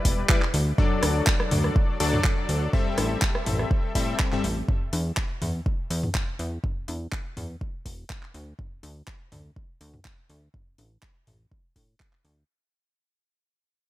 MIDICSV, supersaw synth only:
0, 0, Header, 1, 2, 480
1, 0, Start_track
1, 0, Tempo, 487805
1, 770, Time_signature, 4, 2, 24, 8
1, 13672, End_track
2, 0, Start_track
2, 0, Title_t, "Supersaw synth"
2, 0, Program_c, 0, 81
2, 0, Note_on_c, 0, 55, 78
2, 0, Note_on_c, 0, 64, 71
2, 0, Note_on_c, 0, 71, 72
2, 0, Note_on_c, 0, 74, 85
2, 263, Note_off_c, 0, 55, 0
2, 263, Note_off_c, 0, 64, 0
2, 263, Note_off_c, 0, 74, 0
2, 264, Note_off_c, 0, 71, 0
2, 291, Note_on_c, 0, 55, 77
2, 291, Note_on_c, 0, 64, 72
2, 291, Note_on_c, 0, 71, 73
2, 291, Note_on_c, 0, 74, 86
2, 404, Note_off_c, 0, 55, 0
2, 404, Note_off_c, 0, 64, 0
2, 404, Note_off_c, 0, 71, 0
2, 404, Note_off_c, 0, 74, 0
2, 771, Note_on_c, 0, 54, 83
2, 771, Note_on_c, 0, 62, 79
2, 771, Note_on_c, 0, 69, 78
2, 771, Note_on_c, 0, 74, 92
2, 1943, Note_off_c, 0, 54, 0
2, 1943, Note_off_c, 0, 69, 0
2, 1943, Note_off_c, 0, 74, 0
2, 1944, Note_off_c, 0, 62, 0
2, 1970, Note_on_c, 0, 54, 77
2, 1970, Note_on_c, 0, 62, 70
2, 1970, Note_on_c, 0, 69, 70
2, 1971, Note_on_c, 0, 74, 83
2, 2663, Note_off_c, 0, 54, 0
2, 2663, Note_off_c, 0, 62, 0
2, 2663, Note_off_c, 0, 69, 0
2, 2663, Note_off_c, 0, 74, 0
2, 2690, Note_on_c, 0, 55, 77
2, 2690, Note_on_c, 0, 60, 70
2, 2690, Note_on_c, 0, 69, 68
2, 2690, Note_on_c, 0, 76, 84
2, 3868, Note_off_c, 0, 55, 0
2, 3868, Note_off_c, 0, 60, 0
2, 3868, Note_off_c, 0, 69, 0
2, 3868, Note_off_c, 0, 76, 0
2, 3890, Note_on_c, 0, 55, 92
2, 3890, Note_on_c, 0, 60, 83
2, 3890, Note_on_c, 0, 69, 83
2, 3890, Note_on_c, 0, 76, 100
2, 4226, Note_off_c, 0, 55, 0
2, 4226, Note_off_c, 0, 60, 0
2, 4226, Note_off_c, 0, 69, 0
2, 4226, Note_off_c, 0, 76, 0
2, 4258, Note_on_c, 0, 55, 76
2, 4258, Note_on_c, 0, 60, 69
2, 4258, Note_on_c, 0, 69, 71
2, 4258, Note_on_c, 0, 76, 83
2, 4359, Note_off_c, 0, 55, 0
2, 4359, Note_off_c, 0, 60, 0
2, 4359, Note_off_c, 0, 69, 0
2, 4359, Note_off_c, 0, 76, 0
2, 13672, End_track
0, 0, End_of_file